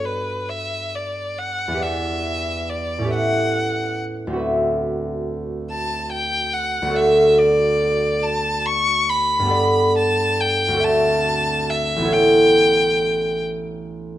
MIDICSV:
0, 0, Header, 1, 3, 480
1, 0, Start_track
1, 0, Key_signature, 1, "major"
1, 0, Tempo, 877193
1, 998, Time_signature, 6, 3, 24, 8
1, 1951, Tempo, 849858
1, 4831, Tempo, 864553
1, 7231, Tempo, 887574
1, 7878, End_track
2, 0, Start_track
2, 0, Title_t, "Violin"
2, 0, Program_c, 0, 40
2, 28, Note_on_c, 0, 71, 42
2, 271, Note_on_c, 0, 76, 50
2, 279, Note_off_c, 0, 71, 0
2, 519, Note_on_c, 0, 74, 41
2, 527, Note_off_c, 0, 76, 0
2, 756, Note_on_c, 0, 78, 50
2, 764, Note_off_c, 0, 74, 0
2, 996, Note_on_c, 0, 76, 50
2, 1004, Note_off_c, 0, 78, 0
2, 1476, Note_on_c, 0, 74, 50
2, 1485, Note_off_c, 0, 76, 0
2, 1714, Note_off_c, 0, 74, 0
2, 1719, Note_on_c, 0, 78, 52
2, 2187, Note_off_c, 0, 78, 0
2, 3162, Note_on_c, 0, 81, 58
2, 3380, Note_off_c, 0, 81, 0
2, 3394, Note_on_c, 0, 79, 63
2, 3627, Note_on_c, 0, 78, 57
2, 3635, Note_off_c, 0, 79, 0
2, 3869, Note_on_c, 0, 76, 56
2, 3878, Note_off_c, 0, 78, 0
2, 4107, Note_on_c, 0, 74, 62
2, 4115, Note_off_c, 0, 76, 0
2, 4587, Note_on_c, 0, 81, 65
2, 4595, Note_off_c, 0, 74, 0
2, 4828, Note_on_c, 0, 85, 74
2, 4836, Note_off_c, 0, 81, 0
2, 5071, Note_on_c, 0, 83, 61
2, 5079, Note_off_c, 0, 85, 0
2, 5553, Note_off_c, 0, 83, 0
2, 5561, Note_on_c, 0, 81, 66
2, 5797, Note_on_c, 0, 79, 63
2, 5806, Note_off_c, 0, 81, 0
2, 6041, Note_on_c, 0, 81, 71
2, 6049, Note_off_c, 0, 79, 0
2, 6516, Note_on_c, 0, 76, 62
2, 6524, Note_off_c, 0, 81, 0
2, 6757, Note_on_c, 0, 79, 71
2, 6765, Note_off_c, 0, 76, 0
2, 7471, Note_off_c, 0, 79, 0
2, 7878, End_track
3, 0, Start_track
3, 0, Title_t, "Harp"
3, 0, Program_c, 1, 46
3, 0, Note_on_c, 1, 43, 31
3, 0, Note_on_c, 1, 59, 27
3, 0, Note_on_c, 1, 66, 25
3, 0, Note_on_c, 1, 69, 26
3, 0, Note_on_c, 1, 71, 36
3, 0, Note_on_c, 1, 74, 27
3, 106, Note_off_c, 1, 71, 0
3, 918, Note_on_c, 1, 40, 34
3, 929, Note_off_c, 1, 59, 0
3, 936, Note_on_c, 1, 59, 28
3, 951, Note_on_c, 1, 67, 28
3, 967, Note_on_c, 1, 71, 30
3, 976, Note_off_c, 1, 43, 0
3, 976, Note_off_c, 1, 74, 0
3, 983, Note_on_c, 1, 74, 29
3, 993, Note_off_c, 1, 66, 0
3, 1001, Note_off_c, 1, 69, 0
3, 1634, Note_on_c, 1, 45, 35
3, 1649, Note_on_c, 1, 61, 29
3, 1659, Note_off_c, 1, 67, 0
3, 1666, Note_on_c, 1, 67, 31
3, 1674, Note_off_c, 1, 71, 0
3, 1681, Note_on_c, 1, 71, 29
3, 1692, Note_off_c, 1, 40, 0
3, 1698, Note_on_c, 1, 76, 28
3, 1724, Note_off_c, 1, 74, 0
3, 2349, Note_on_c, 1, 38, 39
3, 2366, Note_on_c, 1, 60, 32
3, 2383, Note_on_c, 1, 66, 34
3, 2392, Note_off_c, 1, 71, 0
3, 2399, Note_on_c, 1, 71, 33
3, 2410, Note_off_c, 1, 76, 0
3, 2411, Note_off_c, 1, 45, 0
3, 2417, Note_on_c, 1, 76, 34
3, 2419, Note_off_c, 1, 61, 0
3, 2428, Note_off_c, 1, 67, 0
3, 3106, Note_off_c, 1, 59, 0
3, 3783, Note_off_c, 1, 38, 0
3, 3790, Note_on_c, 1, 38, 43
3, 3805, Note_on_c, 1, 59, 36
3, 3816, Note_off_c, 1, 66, 0
3, 3823, Note_on_c, 1, 66, 39
3, 3840, Note_on_c, 1, 69, 36
3, 3856, Note_on_c, 1, 74, 37
3, 3859, Note_off_c, 1, 60, 0
3, 3885, Note_off_c, 1, 76, 0
3, 4601, Note_off_c, 1, 71, 0
3, 5234, Note_on_c, 1, 43, 47
3, 5241, Note_off_c, 1, 59, 0
3, 5248, Note_on_c, 1, 59, 40
3, 5268, Note_on_c, 1, 67, 40
3, 5276, Note_off_c, 1, 69, 0
3, 5283, Note_on_c, 1, 69, 39
3, 5290, Note_off_c, 1, 38, 0
3, 5293, Note_off_c, 1, 74, 0
3, 5299, Note_on_c, 1, 74, 40
3, 5306, Note_off_c, 1, 66, 0
3, 5950, Note_on_c, 1, 38, 47
3, 5965, Note_on_c, 1, 60, 38
3, 5983, Note_on_c, 1, 66, 39
3, 5992, Note_off_c, 1, 69, 0
3, 5999, Note_on_c, 1, 69, 38
3, 6011, Note_off_c, 1, 43, 0
3, 6015, Note_on_c, 1, 76, 38
3, 6018, Note_off_c, 1, 59, 0
3, 6028, Note_off_c, 1, 67, 0
3, 6662, Note_on_c, 1, 33, 44
3, 6677, Note_on_c, 1, 59, 38
3, 6692, Note_on_c, 1, 64, 36
3, 6702, Note_off_c, 1, 69, 0
3, 6709, Note_on_c, 1, 69, 39
3, 6726, Note_off_c, 1, 38, 0
3, 6728, Note_on_c, 1, 73, 37
3, 6733, Note_off_c, 1, 60, 0
3, 6743, Note_off_c, 1, 66, 0
3, 6760, Note_off_c, 1, 74, 0
3, 7878, Note_off_c, 1, 33, 0
3, 7878, Note_off_c, 1, 59, 0
3, 7878, Note_off_c, 1, 64, 0
3, 7878, Note_off_c, 1, 69, 0
3, 7878, Note_off_c, 1, 73, 0
3, 7878, Note_off_c, 1, 76, 0
3, 7878, End_track
0, 0, End_of_file